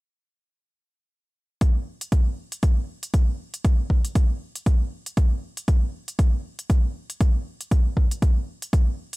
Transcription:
1.61 kick loud
1.61 closed hi-hat medium
2.01 closed hi-hat medium
2.12 kick loud
2.12 closed hi-hat medium
2.52 closed hi-hat medium
2.63 kick loud
2.63 closed hi-hat medium
3.03 closed hi-hat medium
3.14 kick loud
3.14 closed hi-hat medium
3.54 closed hi-hat medium
3.65 kick loud
3.65 closed hi-hat medium
3.90 kick medium
4.05 closed hi-hat medium
4.15 kick loud
4.15 closed hi-hat medium
4.55 closed hi-hat medium
4.66 kick loud
4.66 closed hi-hat soft
5.06 closed hi-hat medium
5.17 kick loud
5.17 closed hi-hat medium
5.57 closed hi-hat medium
5.68 kick loud
5.68 closed hi-hat soft
6.08 closed hi-hat medium
6.19 kick loud
6.19 closed hi-hat soft
6.59 closed hi-hat medium
6.70 kick loud
6.70 closed hi-hat soft
7.10 closed hi-hat medium
7.21 kick loud
7.21 closed hi-hat soft
7.61 closed hi-hat medium
7.71 kick loud
7.71 closed hi-hat soft
7.97 kick medium
8.11 closed hi-hat medium
8.22 kick loud
8.22 closed hi-hat soft
8.62 closed hi-hat medium
8.73 kick loud
8.73 closed hi-hat soft
9.13 closed hi-hat medium

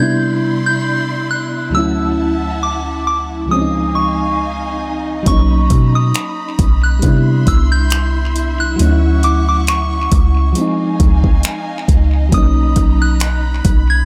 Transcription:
0.00 1.68 C3 medium
0.00 1.69 G3 medium
0.00 1.70 B3 medium
0.00 1.71 D4 medium
0.00 3.46 E4 medium
0.00 1.73 E4 medium
0.00 1.72 D5 medium
0.00 1.72 B5 medium
0.00 1.72 C6 medium
0.00 0.65 G6 medium
0.66 1.32 G6 medium
1.31 1.75 F#6 medium
1.70 3.45 D2 medium
1.70 3.46 F#3 medium
1.70 3.48 E5 medium
1.70 3.48 F#5 medium
1.70 3.48 A5 medium
1.74 3.47 A3 medium
1.74 3.48 C#4 medium
1.74 2.58 E6 medium
1.79 3.49 E4 medium
2.63 3.06 D6 medium
3.07 3.21 D6 medium
3.46 5.21 C#2 medium
3.46 5.22 F3 medium
3.46 6.99 D#4 medium
3.46 6.99 D#5 medium
3.46 5.25 F5 medium
3.46 5.25 G#5 medium
3.51 5.23 G#3 medium
3.51 5.24 C4 medium
3.51 3.96 D#6 medium
3.55 3.59 C#4 medium
3.61 5.29 D#4 medium
3.95 4.79 C#6 medium
5.23 5.69 B1 loud
5.23 6.98 F#3 medium
5.23 6.99 A#3 medium
5.23 7.01 A#5 medium
5.23 8.76 B5 medium
5.23 kick loud
5.23 closed hi-hat medium
5.27 7.00 C#4 medium
5.27 7.02 D#4 medium
5.27 5.97 C#6 medium
5.70 6.13 B2 loud
5.70 kick medium
5.70 closed hi-hat medium
5.95 6.86 D#6 medium
6.14 finger snap medium
6.14 closed hi-hat medium
6.59 7.01 B1 loud
6.59 kick loud
6.59 closed hi-hat medium
6.84 7.43 F#6 medium
6.99 8.74 G3 medium
6.99 8.76 B3 medium
6.99 10.52 E4 medium
6.99 10.52 E5 medium
6.99 8.78 C6 medium
6.99 kick medium
6.99 closed hi-hat medium
7.04 7.46 C3 loud
7.04 8.77 D4 medium
7.08 8.78 E4 medium
7.47 8.75 C2 loud
7.47 7.72 E6 medium
7.47 kick medium
7.47 closed hi-hat medium
7.72 8.56 G6 loud
7.90 finger snap loud
7.90 closed hi-hat medium
8.36 closed hi-hat medium
8.60 9.20 F#6 loud
8.76 10.08 D2 loud
8.76 10.51 F#3 medium
8.76 10.52 A3 medium
8.76 10.54 F#5 medium
8.76 10.54 C#6 medium
8.76 closed hi-hat medium
8.82 10.53 C#4 medium
8.82 8.89 D#4 medium
8.91 10.58 E4 medium
9.23 9.46 D6 medium
9.23 closed hi-hat medium
9.49 9.69 D6 medium
9.67 10.97 C#6 medium
9.67 finger snap loud
9.67 closed hi-hat medium
10.12 10.54 C#2 loud
10.12 kick loud
10.12 closed hi-hat medium
10.53 12.27 F3 medium
10.53 12.29 G#3 medium
10.53 12.31 D#4 medium
10.53 14.05 D#5 medium
10.53 12.31 F5 medium
10.53 12.31 G#5 medium
10.53 closed hi-hat medium
10.58 12.30 C4 medium
10.58 12.31 D#4 medium
11.00 11.42 C#2 loud
11.00 kick medium
11.00 closed hi-hat medium
11.24 kick medium
11.43 finger snap loud
11.43 closed hi-hat medium
11.88 12.31 C#2 medium
11.88 kick medium
11.88 closed hi-hat medium
12.29 12.75 B1 loud
12.29 14.04 F#3 medium
12.29 14.05 A#3 medium
12.29 14.05 D#4 medium
12.29 14.05 A#5 medium
12.29 14.05 B5 medium
12.29 kick loud
12.29 closed hi-hat medium
12.34 14.05 C#4 medium
12.34 14.05 D#4 medium
12.34 13.03 D#6 medium
12.76 13.61 B1 loud
12.76 kick medium
12.76 closed hi-hat medium
13.02 13.85 F#6 loud
13.20 finger snap loud
13.20 closed hi-hat medium
13.65 14.05 B1 loud
13.65 kick loud
13.65 closed hi-hat medium
13.90 14.05 G#6 medium

